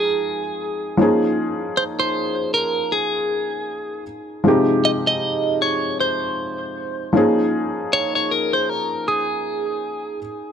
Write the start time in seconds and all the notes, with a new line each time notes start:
Already playing: F3 G#3 C4 D#4 G#4 G5
0.97 F3 A#3 C#4 D#4
1.02 G#4
1.77 C5
1.99 C5
2.54 A#4
2.92 G#4
4.44 C3 F3 G#3 D#4
4.48 G4
4.85 D#5
5.07 D#5
5.62 C#5
6.00 C5
7.13 F3 A#3 C#4 D#4
7.17 G#4
7.93 C#5
8.15 C#5
8.31 A#4
8.53 C5
8.69 A#4
9.08 G#4